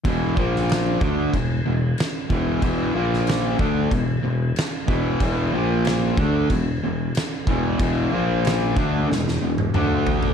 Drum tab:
CC |x---x---x---x---|x---x---x---x---|x---x---x---x---|x---x-----------|
SD |---oo-------o---|---oo-------o---|----o-------o---|----o---oo------|
T1 |----------------|----------------|----------------|-----------o----|
T2 |----------------|----------------|----------------|------------o---|
FT |----------------|----------------|----------------|--------------oo|
BD |o-o---o-o-----o-|o-----o-o-----o-|o-----o-o-----o-|o-----o---------|